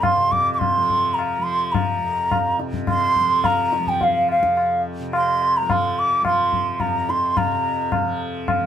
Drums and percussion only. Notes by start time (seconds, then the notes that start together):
0.03 tabla na, tabla ge
0.32 tabla ge
0.61 tabla na, tabla ge
0.90 tabla ge
1.19 tabla na
1.74 tabla na, tabla ge
2.31 tabla na, tabla ge
2.59 tabla te
2.73 tabla ge
2.87 tabla na, tabla ge
3.15 tabla ge
3.44 tabla na, tabla ge
3.72 tabla te
3.87 tabla ge
4.01 tabla tin, tabla ge
4.29 tabla na
4.43 tabla ke
4.57 tabla na
5.13 tabla na
5.41 tabla na
5.70 tabla na, tabla ge
6.25 tabla na, tabla ge
6.53 tabla ge
6.80 tabla na, tabla ge
7.09 tabla te
7.37 tabla na, tabla ge
7.92 tabla na, tabla ge
8.48 tabla na, tabla ge